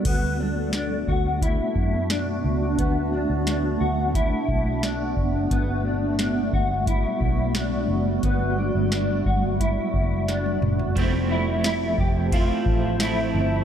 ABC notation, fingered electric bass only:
X:1
M:4/4
L:1/16
Q:1/4=88
K:G
V:1 name="Fingered electric bass" clef=bass
D,,6 D,,3 z F,,4 ^C,,2 | D,,3 D,,3 D,,3 z B,,,4 F,,,2 | G,,,6 G,,,3 z B,,,4 F,,,2 | G,,,3 G,,,3 G,,,3 z F,,,4 F,,,2 |
[K:Flyd] F,,,6 F,,,3 z A,,,4 G,,,2 |]